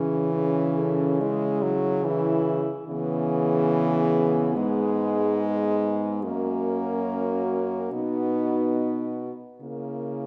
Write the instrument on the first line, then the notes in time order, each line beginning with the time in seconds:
french horn
Already playing: C#3 E3 C#4 G#4
0.33 C#4 G#4
0.78 A4
1.20 G#3 E4 G#4
1.62 F#3
2.04 E3 E4 G#4
2.87 C#3 E3 B3 G#4
4.55 G#2 G#3
6.22 F#2 A#3 C#4 F#4
7.92 B2 B3 D#4
9.61 C#3 A#3 E4 A#4